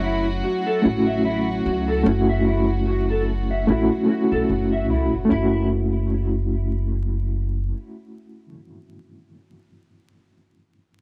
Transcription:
Already playing: F#1 F#3 A3 C#4 E4 F#4
0.04 E4
0.44 F#4
0.67 A4
0.82 A1 A3 C#4 E4
0.87 F#4
1.07 E5
1.25 E4
1.66 C#2 F#4
1.88 A4
2.03 F#1 A3 C#4
2.09 E4 F#4
2.29 E5
2.46 E4
2.87 F#4
3.10 A4
3.51 E5
3.67 A1 A3 C#4 E4
3.72 F#4
4.06 A3 C#4 F#4
4.11 E4 F#4
4.32 B1 A4
4.50 F#1
4.72 E5
4.90 C#2 E4
5.13 F#1
5.25 A3
5.29 F#1 C#4 E4
5.38 F#4

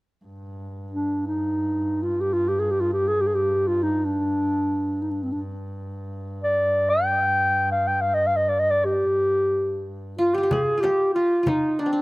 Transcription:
0.25 G2
0.91 D4
1.27 D#4
2.03 F4
2.21 G4
2.33 F4
2.48 G4
2.59 G#4
2.71 G4
2.81 F4
2.93 G4
3.08 G#4
3.21 G4
3.27 G#4
3.35 G4
3.68 F4
3.83 D#4
4.05 D4
5.02 D#4
5.11 D4
5.23 C4
5.32 D4
5.38 G2
6.43 D5
6.89 G5
7.71 F5
7.87 G5
8.01 F5
8.14 D#5
8.27 F5
8.36 D#5
8.49 D5
8.59 D#5
8.71 D5
8.85 G4
10.18 F4
10.34 F4 G4
10.43 G4
10.51 G#4, frame drum, darbuka dum
10.78 F4 G4
10.83 G4, darbuka tek, frame drum
10.98 darbuka ka
11.14 F4, darbuka ka
11.43 F4, darbuka dum, frame drum
11.48 D#4
11.79 D4
11.86 C4
11.93 D4

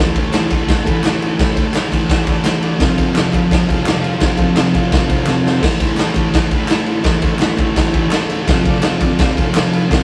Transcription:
Already playing: A2
0.00 E3 A3
0.13 A3 E4 A4 C5, kick, ride
0.18 E3
0.30 A2 E3 E4 A4 C5, snare, clap, ride
0.35 A3
0.50 E3 A3 E4 A4 C5, kick, clap, ride
0.67 E4 A4 C5, kick, snare, ride
0.84 E3 A3 E4 A4 B4, kick, ride
1.03 A2 E3 A3 E4 A4 C5, snare, clap, ride
1.19 E4 A4 C5, ride
1.38 A2 E3 A3 E4 A4 B4, kick, snare, ride
1.51 E4 A4 C5
1.56 E3 A3, kick, ride
1.73 A2 E3 E4 A4 B4, snare, clap, ride
1.77 A3
1.91 E3 A3 E4 A4 C5, kick, clap, ride
2.05 E4 A4 C5
2.10 kick, snare, ride
2.22 A3 E4 A4 D5
2.27 E3, kick, ride
2.43 A2 E3 A3 E4 A4 C5, snare, clap, ride
2.61 E4 A4 D5, ride
2.78 F2 C3 F3 F4 A4 C5, kick, snare, ride
2.93 F3 F4 A4 C5
2.98 C3, kick, ride
3.14 F2 C3 F3 F4 A4 C5, snare, clap, ride
3.31 C3 F3 F4 A4 B4, kick, clap, ride
3.50 F4 A4 C5, kick, snare, ride
3.67 C3 F3 F4 A4 C5, kick, ride
3.84 F2 C3 F4 A4 D5, clap, ride
3.88 F3, snare
4.01 F4 A4 C5, ride
4.18 F2 F4 A4 C5, kick, snare, ride
4.22 C3 F3
4.36 F3 F4 A4 C5, kick, ride
4.40 C3
4.53 F2 F4 A4 C5, snare, clap, ride
4.58 C3 F3
4.74 C3 F3 F4 A4 C5, kick, clap, ride
4.92 F4 A4 C5, kick, snare, ride
5.06 F3 F4 A4 C5, kick, ride
5.11 C3
5.22 F4 A4 C5, clap
5.26 F2 C3 F3, snare
5.43 F4 A4 C5, snare
5.60 A2 E3 E4 A4 C5, kick, crash
5.64 A3, snare
5.79 E3 A3 E4 A4 C5, kick, ride
5.96 A2 E3 A3 E4 C5, snare, clap, ride
6.00 A4
6.15 E3 A3 E4 A4, kick, clap, ride
6.19 B4
6.34 E4, kick, snare, ride
6.38 A4 C5
6.51 E3 A3 E4 A4 B4, kick, ride
6.68 A2 E3 A3 E4 A4 B4, snare, clap, ride
6.86 E4 A4 C5, ride
7.03 A2 E3 A3 E4 A4 C5, kick, snare, ride
7.22 E3 A3 E4 A4 C5, kick, ride
7.39 A2 E3 A3 E4 A4, snare, clap, ride
7.43 B4
7.57 E3 A3 E4 A4 C5 G5, kick, clap, ride
7.75 E4 A4 C5 A5, kick, snare, ride
7.92 A3 E4 A4 B4 G5, kick, ride
7.96 E3
8.08 A2 E4 A4 C5 A5, clap, ride
8.13 E3 A3, snare
8.28 E4 A4 C5 E5, ride
8.46 F2 F4 A4 C5, kick, snare, ride
8.50 C3 F3
8.64 C3 F3 F4 A4, kick, ride
8.69 D5
8.82 F2 C3 F4 A4 C5, snare, clap, ride
8.86 F3
9.01 C3 F3 F4 A4 D5, kick, clap, ride
9.19 F4 A4 D5, kick, snare, ride
9.36 C3 F3 F4 A4 C5, kick, ride
9.54 F2 C3 F3 F4 A4 C5, snare, clap, ride
9.72 F4 A4 B4, ride
9.89 F2 C3 F3 F4 A4 C5, kick, snare, ride

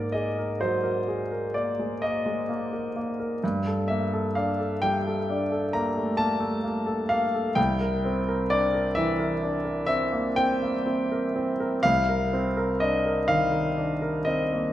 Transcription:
Already playing: G#2 A#3 A#4 D5
0.12 G#4 D#5
0.39 A#4
0.61 F#3 C5
0.83 A#4
1.08 G#4
1.32 A#4
1.54 A#3 D5
1.79 G#3
2.02 A#3 D#5
2.26 G#3
2.49 A#3
2.73 A#4
2.96 A#3
3.20 A#4
3.44 G2
3.67 A4
3.88 A#3 E5
4.13 A4
4.35 D4 F5
4.60 A4
4.82 G3 G5
5.07 A4
5.30 D4
5.52 A4
5.73 A#3 A#5
5.97 A3
6.17 A#3 A5
6.40 A3
6.64 A#3
6.86 A4
7.09 A#3 F5
7.34 A4
7.55 C2 G5
7.80 A#4
8.05 C4
8.28 A#4
8.50 D4 D5
8.74 A#4
8.95 E3 E5
9.20 A#4
9.43 D4
9.65 A#4
9.86 C4 E5
10.13 A#3
10.36 C4 G5
10.62 A#3
10.86 C4
11.12 A#4
11.36 C4
11.60 A#4
11.83 C2 F5
12.09 A#4
12.33 C4
12.57 A#4
12.80 D4 D#5
13.06 A#4
13.28 D#3 F5
13.52 A#4
13.77 D4
14.02 A#4
14.25 C4 D#5
14.53 A#3

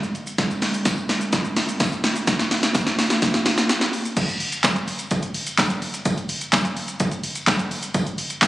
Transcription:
0.03 shaker
0.15 closed hi-hat, shaker
0.27 shaker
0.38 kick, snare, closed hi-hat, tambourine, shaker
0.50 tambourine, shaker
0.62 snare, open hi-hat, tambourine, shaker
0.74 shaker
0.85 kick, snare, closed hi-hat, tambourine, shaker
0.98 shaker
1.09 snare, open hi-hat, tambourine, shaker
1.21 shaker
1.33 kick, snare, closed hi-hat, tambourine, shaker
1.45 shaker
1.56 snare, open hi-hat, tambourine, shaker
1.69 shaker
1.80 kick, snare, closed hi-hat, tambourine, shaker
1.92 shaker
2.04 snare, open hi-hat, tambourine, shaker
2.16 shaker
2.27 kick, snare, closed hi-hat, tambourine, shaker
2.39 snare, tambourine, shaker
2.51 snare, open hi-hat, tambourine, shaker
2.63 snare, shaker
2.75 kick, snare, closed hi-hat, tambourine, shaker
2.87 snare, shaker
2.99 snare, open hi-hat, tambourine, shaker
3.10 snare, tambourine, shaker
3.22 kick, snare, closed hi-hat, tambourine, shaker
3.34 snare, tambourine, shaker
3.46 snare, open hi-hat, tambourine, shaker
3.58 snare, shaker
3.69 snare, closed hi-hat, tambourine, shaker
3.81 snare, shaker
3.93 open hi-hat, tambourine, shaker
4.05 shaker
4.17 kick, closed hi-hat, crash, tambourine, shaker
4.29 closed hi-hat, tambourine, shaker
4.40 open hi-hat, tambourine, shaker
4.52 closed hi-hat, shaker
4.64 kick, snare, clap, closed hi-hat, tambourine, shaker
4.76 closed hi-hat, shaker
4.88 open hi-hat, tambourine, shaker
4.99 closed hi-hat, tambourine, shaker
5.11 kick, closed hi-hat, tambourine, shaker
5.23 closed hi-hat, shaker
5.34 open hi-hat, tambourine, shaker
5.47 closed hi-hat, tambourine, shaker
5.58 kick, snare, clap, closed hi-hat, tambourine, shaker
5.70 closed hi-hat, shaker
5.82 open hi-hat, tambourine, shaker
5.94 closed hi-hat, shaker
6.05 kick, closed hi-hat, tambourine, shaker
6.18 closed hi-hat, shaker
6.29 open hi-hat, tambourine, shaker
6.41 closed hi-hat, shaker
6.53 kick, snare, clap, closed hi-hat, tambourine, shaker
6.65 closed hi-hat, shaker
6.77 open hi-hat, tambourine, shaker
6.88 closed hi-hat, shaker
7.00 kick, closed hi-hat, tambourine, shaker
7.11 closed hi-hat, shaker
7.24 open hi-hat, tambourine, shaker
7.35 closed hi-hat, tambourine, shaker
7.47 kick, snare, clap, closed hi-hat, tambourine, shaker
7.59 closed hi-hat, shaker
7.71 open hi-hat, tambourine, shaker
7.83 closed hi-hat, shaker
7.94 kick, closed hi-hat, tambourine, shaker
8.07 closed hi-hat, shaker
8.18 open hi-hat, tambourine, shaker
8.30 closed hi-hat, shaker
8.42 kick, snare, clap, closed hi-hat, tambourine, shaker

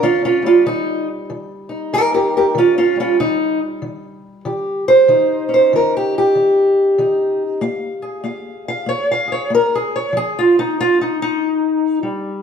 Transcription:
0.03 D#3 C#4 F4
0.25 C#4 F4
0.42 G3 C#4
0.47 F4
0.66 D#3 D#4
1.30 D#3
1.69 D#4
1.93 D#3 G4 A#4
2.14 G4 A#4
2.37 G4 A#4
2.55 D#3 C#4 F4
2.78 C#4 F4
2.96 G3
3.00 C#4 F4
3.20 D#3 D#4
3.82 D#3
4.45 D#3 G4
4.88 C5
5.08 D#3 D#4
5.49 C#4
5.54 C5
5.73 D#3 A#4
5.97 G4
6.18 G4
6.35 D#3
6.98 D#3 D#4
7.61 A#3 F5
8.02 G#4
8.24 A#3 F5
8.68 F5
8.86 A#3 C#5
9.11 F5
9.28 G#4
9.32 C#5
9.50 A#3
9.55 A#4
9.75 G#4
9.96 C#5
10.13 F3
10.17 G#4
10.39 F4
10.59 D#4
10.80 F4
11.01 D#4
11.22 D#4
12.03 G3

